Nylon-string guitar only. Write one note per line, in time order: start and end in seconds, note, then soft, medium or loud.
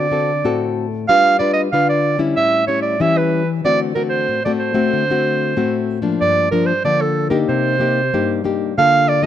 0.00 0.42 D3 medium
0.11 0.31 C4 medium
0.11 0.31 F#4 soft
0.11 0.31 A4 medium
0.44 1.05 A2 medium
0.44 0.86 C4 medium
0.44 0.86 F#4 medium
0.44 0.86 A4 medium
1.09 1.70 G3 medium
1.09 1.36 D4 medium
1.09 1.36 F4 medium
1.09 1.36 B4 medium
1.40 1.67 D4 soft
1.40 1.67 F4 soft
1.40 1.67 B4 medium
1.73 2.34 D3 medium
1.73 2.16 D4 medium
1.73 2.16 F4 medium
1.73 2.16 B4 medium
2.18 2.63 G3 medium
2.18 2.63 C#4 medium
2.18 2.63 E4 medium
2.37 2.98 A2 medium
2.68 2.95 G3 soft
2.68 2.96 C#4 soft
2.68 2.96 E4 medium
3.00 3.61 E3 medium
3.00 3.42 G3 medium
3.00 3.42 C#4 soft
3.00 3.42 E4 medium
3.65 4.26 D3 medium
3.65 3.92 A3 medium
3.65 3.92 C4 medium
3.65 3.92 F#4 medium
3.95 4.39 A3 medium
3.95 4.39 C4 medium
3.95 4.40 F#4 medium
4.29 4.90 A2 medium
4.46 4.73 A3 medium
4.46 4.73 C4 medium
4.46 4.73 F#4 medium
4.74 5.03 A3 medium
4.74 5.03 C4 medium
4.74 5.03 F#4 medium
4.93 5.54 D3 medium
5.10 5.53 A3 medium
5.10 5.53 C4 medium
5.10 5.53 F#4 medium
5.56 6.18 A2 medium
5.56 6.00 A3 medium
5.56 6.00 C4 medium
5.56 6.00 F#4 medium
6.02 6.47 F3 medium
6.02 6.47 A#3 medium
6.02 6.47 D4 medium
6.21 6.82 G2 medium
6.52 6.72 F3 medium
6.52 6.72 A#3 soft
6.52 6.72 D4 medium
6.85 7.46 D3 medium
6.85 7.28 F3 medium
6.85 7.29 A#3 medium
6.85 7.29 D4 medium
7.30 7.75 A#3 medium
7.30 7.75 D#4 medium
7.30 7.76 G4 medium
7.49 8.10 C3 medium
7.80 8.00 A#3 soft
7.80 8.00 D#4 medium
7.80 8.00 G4 medium
8.14 8.75 G2 medium
8.14 8.41 A#3 medium
8.14 8.41 D#4 medium
8.14 8.41 G4 medium
8.44 8.72 A#3 medium
8.44 8.72 D#4 medium
8.44 8.73 G4 medium
8.78 9.26 D3 medium
8.78 9.21 A#3 soft
8.78 9.21 F4 medium
8.78 9.22 A4 medium
9.23 9.26 A#3 medium